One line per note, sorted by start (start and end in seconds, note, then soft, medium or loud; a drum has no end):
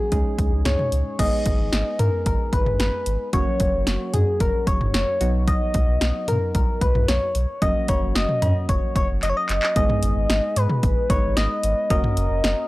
0.00 0.61 G#4 loud
0.12 0.23 C#2 loud
0.12 1.17 G#3 medium
0.12 1.17 C#4 medium
0.12 1.17 D#4 medium
0.12 1.17 G#4 medium
0.12 kick medium
0.12 closed hi-hat medium
0.38 0.49 C#2 loud
0.38 kick medium
0.38 closed hi-hat medium
0.52 0.63 C#2 medium
0.65 0.76 C#2 loud
0.65 1.21 C#5 loud
0.65 snare loud
0.65 closed hi-hat medium
0.65 mid tom medium
0.79 mid tom medium
0.92 1.03 C#2 loud
0.92 closed hi-hat medium
1.19 1.30 G#1 loud
1.19 3.29 G#3 medium
1.19 3.29 B3 medium
1.19 3.29 D#4 medium
1.19 3.29 G#4 medium
1.19 2.01 D#5 loud
1.19 kick loud
1.19 closed hi-hat medium
1.19 crash medium
1.46 1.57 G#1 loud
1.46 kick medium
1.46 closed hi-hat medium
1.59 1.70 G#1 loud
1.72 1.83 G#1 loud
1.72 snare loud
1.72 closed hi-hat medium
1.99 2.10 G#2 loud
1.99 2.26 A#4 loud
1.99 closed hi-hat medium
1.99 mid tom loud
2.26 2.37 G#1 loud
2.26 2.55 A#4 loud
2.26 kick medium
2.26 closed hi-hat medium
2.53 2.64 G#1 medium
2.53 2.79 B4 loud
2.53 kick medium
2.53 closed hi-hat medium
2.66 2.77 G#1 loud
2.66 mid tom medium
2.80 2.91 G#1 loud
2.80 3.30 B4 loud
2.80 snare loud
2.80 closed hi-hat medium
3.06 3.17 G#1 loud
3.06 closed hi-hat medium
3.33 3.44 F#1 loud
3.33 5.17 F#3 medium
3.33 5.17 A#3 medium
3.33 5.17 C#4 medium
3.33 5.17 F#4 medium
3.33 4.15 C#5 loud
3.33 kick loud
3.33 closed hi-hat medium
3.60 3.71 F#1 loud
3.60 kick medium
3.60 closed hi-hat medium
3.73 3.84 F#1 medium
3.87 3.98 F#1 loud
3.87 snare loud
3.87 closed hi-hat medium
4.14 4.25 F#2 medium
4.14 4.40 G#4 loud
4.14 closed hi-hat medium
4.14 mid tom loud
4.40 4.51 F#1 loud
4.40 4.69 A#4 loud
4.40 kick medium
4.40 closed hi-hat medium
4.67 4.78 F#1 loud
4.67 4.93 C#5 loud
4.67 kick loud
4.67 closed hi-hat medium
4.81 4.91 F#1 medium
4.81 mid tom medium
4.94 5.05 F#1 loud
4.94 5.44 C#5 loud
4.94 snare loud
4.94 closed hi-hat medium
5.21 5.53 B1 loud
5.21 7.31 F#3 medium
5.21 7.31 B3 medium
5.21 7.31 D#4 medium
5.21 7.31 F#4 medium
5.21 closed hi-hat medium
5.48 6.30 D#5 loud
5.48 kick loud
5.48 closed hi-hat medium
5.74 5.85 B1 loud
5.74 kick medium
5.74 closed hi-hat medium
5.88 5.99 B1 medium
6.01 6.12 B1 loud
6.01 snare loud
6.01 closed hi-hat medium
6.28 6.39 B2 loud
6.28 6.55 A#4 medium
6.28 closed hi-hat medium
6.28 mid tom loud
6.55 6.66 B1 loud
6.55 6.83 A#4 loud
6.55 kick medium
6.55 closed hi-hat medium
6.81 6.92 B1 loud
6.81 7.10 B4 medium
6.81 kick loud
6.81 closed hi-hat medium
6.95 7.06 B1 medium
6.95 mid tom medium
7.08 7.19 B1 loud
7.08 7.63 C#5 loud
7.08 snare loud
7.08 closed hi-hat medium
7.35 7.46 B1 loud
7.35 closed hi-hat medium
7.62 7.73 F#1 loud
7.62 9.72 F#3 medium
7.62 9.72 A#3 medium
7.62 9.72 C#4 medium
7.62 9.72 F#4 medium
7.62 7.90 D#5 loud
7.62 kick loud
7.62 closed hi-hat medium
7.88 8.00 F#1 loud
7.88 8.17 C#5 loud
7.88 kick medium
7.88 closed hi-hat medium
7.88 cowbell medium
8.02 8.13 F#1 medium
8.15 8.26 F#1 loud
8.15 8.68 D#5 loud
8.15 snare loud
8.15 closed hi-hat medium
8.29 mid tom medium
8.42 8.53 F#2 medium
8.42 closed hi-hat medium
8.42 mid tom loud
8.42 cowbell medium
8.69 8.80 F#1 loud
8.69 8.94 C#5 medium
8.69 kick medium
8.69 closed hi-hat medium
8.96 9.07 F#1 loud
8.96 9.08 C#5 loud
8.96 kick loud
8.96 closed hi-hat medium
9.09 9.20 F#1 medium
9.23 9.33 F#1 loud
9.23 9.31 D#5 loud
9.23 clap medium
9.23 closed hi-hat medium
9.30 9.38 C#5 loud
9.37 9.76 D#5 loud
9.49 9.60 F#1 loud
9.49 clap medium
9.49 closed hi-hat medium
9.63 clap medium
9.76 9.87 G#1 loud
9.76 11.07 G#3 medium
9.76 11.07 B3 medium
9.76 11.07 D#4 medium
9.76 11.07 G#4 medium
9.76 10.58 D#5 loud
9.76 kick loud
9.76 closed hi-hat medium
9.89 mid tom loud
10.03 10.14 G#1 loud
10.03 closed hi-hat medium
10.16 10.27 G#1 loud
10.30 10.40 G#1 loud
10.30 snare loud
10.30 closed hi-hat medium
10.56 10.67 G#2 loud
10.56 11.12 B4 loud
10.56 closed hi-hat medium
10.70 mid tom medium
10.83 10.94 G#1 loud
10.83 kick loud
10.83 closed hi-hat medium
11.10 11.21 G#1 loud
11.10 11.90 G#3 medium
11.10 11.90 B3 soft
11.10 11.90 D#4 soft
11.10 11.90 B4 medium
11.10 11.38 C#5 loud
11.10 kick loud
11.10 closed hi-hat medium
11.23 11.34 G#1 loud
11.37 11.48 G#1 loud
11.37 11.90 D#5 loud
11.37 snare loud
11.37 closed hi-hat medium
11.63 11.74 G#1 loud
11.63 closed hi-hat medium
11.90 12.01 F#1 loud
11.90 12.68 A#3 medium
11.90 12.68 C#4 medium
11.90 12.68 F#4 medium
11.90 12.68 A#4 medium
11.90 12.68 D#5 loud
11.90 kick loud
11.90 closed hi-hat medium
12.04 mid tom loud
12.17 12.28 F#1 loud
12.17 closed hi-hat medium
12.31 12.41 F#1 medium
12.44 12.55 F#1 loud
12.44 snare loud
12.44 closed hi-hat medium